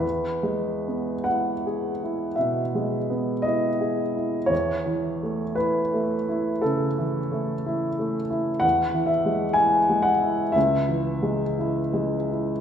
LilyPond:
<<
  \new Staff \with { instrumentName = "Upright piano" } { \time 4/4 \key e \major \tempo 4 = 57 b'4 fis''4 e''4 dis''4 | cis''4 b'4 a'4. r8 | fis''8 e''8 gis''8 fis''8 e''2 | }
  \new Staff \with { instrumentName = "Upright piano" } { \time 4/4 \key e \major \tuplet 3/2 { e,8 gis8 b8 e'8 gis'8 e'8 b,8 gis8 b8 e'8 gis'8 e'8 } | \tuplet 3/2 { e,8 e8 a8 e'8 a8 e'8 cis8 e8 a8 e'8 a8 e'8 } | \tuplet 3/2 { e,8 e8 gis8 e'8 gis8 e'8 cis,8 e8 gis8 e'8 gis8 e'8 } | }
>>